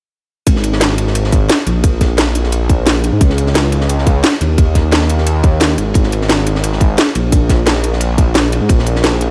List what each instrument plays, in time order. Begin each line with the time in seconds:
0.47 detuned saw bass G#1, kick, closed hi-hat, ride
0.56 snare
0.63 closed hi-hat, ride
0.73 snare
0.81 snare, closed hi-hat, ride
0.90 snare
0.98 closed hi-hat, ride
1.07 snare
1.15 closed hi-hat, ride
1.24 snare
1.32 kick, closed hi-hat, ride
1.49 snare, closed hi-hat, ride
1.59 snare
1.67 detuned saw bass A#1, closed hi-hat, ride
1.83 kick, closed hi-hat, ride
2.01 kick, snare, closed hi-hat, ride
2.18 snare, closed hi-hat, ride
2.27 snare
2.35 closed hi-hat, ride
2.44 snare
2.52 closed hi-hat, ride
2.69 kick, closed hi-hat, ride
2.86 snare, closed hi-hat, ride
3.04 closed hi-hat, ride
3.13 detuned saw bass G#2
3.21 detuned saw bass C#2, kick, closed hi-hat, ride
3.30 snare
3.38 closed hi-hat, ride
3.47 snare
3.55 snare, closed hi-hat, ride
3.63 snare
3.72 closed hi-hat, ride
3.81 snare
3.89 closed hi-hat, ride
3.99 snare
4.07 kick, closed hi-hat, ride
4.24 snare, closed hi-hat, ride
4.32 snare
4.41 detuned saw bass D#2, closed hi-hat, ride
4.58 kick, closed hi-hat, ride
4.75 kick, snare, closed hi-hat, ride
4.92 snare, closed hi-hat, ride
5.02 snare
5.10 closed hi-hat, ride
5.18 snare
5.27 closed hi-hat, ride
5.43 kick, closed hi-hat, ride
5.60 snare, closed hi-hat, ride
5.78 detuned saw bass G#1, closed hi-hat, ride
5.94 detuned saw bass G#1, kick, closed hi-hat, ride
6.04 snare
6.12 closed hi-hat, ride
6.22 snare
6.29 snare, closed hi-hat, ride
6.38 snare
6.47 closed hi-hat, ride
6.55 snare
6.64 closed hi-hat, ride
6.73 snare
6.80 kick, closed hi-hat, ride
6.98 snare, closed hi-hat, ride
7.07 snare
7.15 detuned saw bass A#1, closed hi-hat, ride
7.32 kick, closed hi-hat, ride
7.49 kick, snare, closed hi-hat, ride
7.66 snare, closed hi-hat, ride
7.75 snare
7.84 closed hi-hat, ride
7.93 snare
8.00 closed hi-hat, ride
8.18 kick, closed hi-hat, ride
8.35 snare, closed hi-hat, ride
8.52 closed hi-hat, ride
8.61 detuned saw bass G#2
8.69 detuned saw bass A#1, kick, closed hi-hat, ride
8.79 snare
8.86 closed hi-hat, ride
8.96 snare
9.04 snare, closed hi-hat, ride
9.13 snare
9.21 closed hi-hat, ride